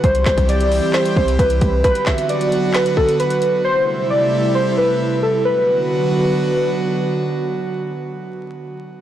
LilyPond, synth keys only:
\new Staff \with { instrumentName = "Synth keys" } { \time 4/4 \key b \phrygian \tempo 4 = 133 c''8 c''8 d''4 c''8 c''8 b'4 | b'8 e''8 d''4 b'8 a'8 b'4 | c''8 c''8 d''4 c''8 b'4 a'8 | b'2. r4 |
r1 | }